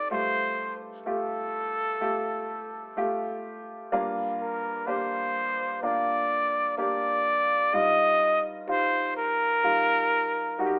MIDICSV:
0, 0, Header, 1, 3, 480
1, 0, Start_track
1, 0, Tempo, 952381
1, 58, Time_signature, 4, 2, 24, 8
1, 5439, End_track
2, 0, Start_track
2, 0, Title_t, "Trumpet"
2, 0, Program_c, 0, 56
2, 53, Note_on_c, 0, 72, 94
2, 379, Note_off_c, 0, 72, 0
2, 537, Note_on_c, 0, 69, 83
2, 1717, Note_off_c, 0, 69, 0
2, 2222, Note_on_c, 0, 70, 67
2, 2454, Note_on_c, 0, 72, 88
2, 2461, Note_off_c, 0, 70, 0
2, 2936, Note_off_c, 0, 72, 0
2, 2939, Note_on_c, 0, 74, 80
2, 3398, Note_off_c, 0, 74, 0
2, 3419, Note_on_c, 0, 74, 89
2, 3900, Note_on_c, 0, 75, 110
2, 3908, Note_off_c, 0, 74, 0
2, 4243, Note_off_c, 0, 75, 0
2, 4380, Note_on_c, 0, 72, 94
2, 4602, Note_off_c, 0, 72, 0
2, 4621, Note_on_c, 0, 70, 99
2, 5439, Note_off_c, 0, 70, 0
2, 5439, End_track
3, 0, Start_track
3, 0, Title_t, "Upright piano"
3, 0, Program_c, 1, 0
3, 0, Control_c, 1, 64, 127
3, 0, Note_on_c, 1, 60, 56
3, 0, Note_on_c, 1, 63, 51
3, 0, Note_on_c, 1, 67, 59
3, 0, Note_on_c, 1, 69, 61
3, 55, Note_on_c, 1, 57, 66
3, 57, Note_on_c, 1, 43, 50
3, 58, Note_on_c, 1, 65, 52
3, 60, Note_off_c, 1, 67, 0
3, 60, Note_on_c, 1, 67, 65
3, 64, Note_off_c, 1, 60, 0
3, 64, Control_c, 1, 64, 0
3, 66, Note_off_c, 1, 63, 0
3, 67, Note_off_c, 1, 69, 0
3, 153, Control_c, 1, 64, 127
3, 512, Note_off_c, 1, 57, 0
3, 514, Note_off_c, 1, 65, 0
3, 515, Note_off_c, 1, 67, 0
3, 534, Note_on_c, 1, 57, 58
3, 538, Note_on_c, 1, 65, 59
3, 538, Note_on_c, 1, 67, 69
3, 992, Note_off_c, 1, 57, 0
3, 994, Note_off_c, 1, 65, 0
3, 994, Note_off_c, 1, 67, 0
3, 1013, Note_on_c, 1, 57, 61
3, 1015, Note_on_c, 1, 65, 56
3, 1016, Note_on_c, 1, 67, 70
3, 1471, Note_off_c, 1, 57, 0
3, 1472, Note_off_c, 1, 65, 0
3, 1473, Note_off_c, 1, 67, 0
3, 1496, Note_on_c, 1, 57, 64
3, 1498, Note_on_c, 1, 65, 66
3, 1499, Note_on_c, 1, 67, 83
3, 1953, Note_off_c, 1, 57, 0
3, 1954, Note_off_c, 1, 65, 0
3, 1955, Note_off_c, 1, 67, 0
3, 1957, Note_off_c, 1, 43, 0
3, 1976, Note_on_c, 1, 55, 58
3, 1976, Note_on_c, 1, 58, 79
3, 1977, Note_on_c, 1, 62, 70
3, 1978, Note_on_c, 1, 43, 70
3, 1980, Note_on_c, 1, 65, 84
3, 1985, Control_c, 1, 64, 0
3, 2089, Control_c, 1, 64, 127
3, 2433, Note_off_c, 1, 58, 0
3, 2433, Note_off_c, 1, 62, 0
3, 2435, Note_off_c, 1, 65, 0
3, 2452, Note_on_c, 1, 58, 60
3, 2456, Note_on_c, 1, 62, 57
3, 2457, Note_on_c, 1, 67, 71
3, 2911, Note_off_c, 1, 58, 0
3, 2913, Note_off_c, 1, 62, 0
3, 2913, Note_off_c, 1, 67, 0
3, 2935, Note_on_c, 1, 58, 59
3, 2939, Note_on_c, 1, 62, 64
3, 2940, Note_on_c, 1, 65, 70
3, 3392, Note_off_c, 1, 58, 0
3, 3394, Note_off_c, 1, 62, 0
3, 3395, Note_off_c, 1, 65, 0
3, 3414, Note_on_c, 1, 58, 63
3, 3419, Note_on_c, 1, 62, 56
3, 3420, Note_on_c, 1, 67, 73
3, 3872, Note_off_c, 1, 58, 0
3, 3874, Note_off_c, 1, 62, 0
3, 3875, Note_off_c, 1, 67, 0
3, 3877, Note_off_c, 1, 55, 0
3, 3878, Note_off_c, 1, 43, 0
3, 3896, Note_on_c, 1, 55, 71
3, 3898, Note_on_c, 1, 63, 60
3, 3899, Note_on_c, 1, 43, 57
3, 3901, Note_on_c, 1, 65, 74
3, 3903, Control_c, 1, 64, 0
3, 3996, Control_c, 1, 64, 127
3, 4353, Note_off_c, 1, 55, 0
3, 4354, Note_off_c, 1, 63, 0
3, 4355, Note_off_c, 1, 65, 0
3, 4372, Note_on_c, 1, 55, 61
3, 4375, Note_on_c, 1, 63, 54
3, 4378, Note_on_c, 1, 65, 69
3, 4831, Note_off_c, 1, 55, 0
3, 4832, Note_off_c, 1, 63, 0
3, 4834, Note_off_c, 1, 65, 0
3, 4855, Note_on_c, 1, 55, 63
3, 4857, Note_on_c, 1, 63, 57
3, 4860, Note_on_c, 1, 65, 76
3, 5313, Note_off_c, 1, 55, 0
3, 5313, Note_off_c, 1, 63, 0
3, 5315, Note_off_c, 1, 65, 0
3, 5335, Note_on_c, 1, 55, 72
3, 5337, Note_on_c, 1, 63, 69
3, 5339, Note_on_c, 1, 66, 68
3, 5371, Note_off_c, 1, 66, 0
3, 5373, Note_on_c, 1, 67, 75
3, 5439, Note_off_c, 1, 43, 0
3, 5439, Note_off_c, 1, 55, 0
3, 5439, Note_off_c, 1, 63, 0
3, 5439, Note_off_c, 1, 67, 0
3, 5439, End_track
0, 0, End_of_file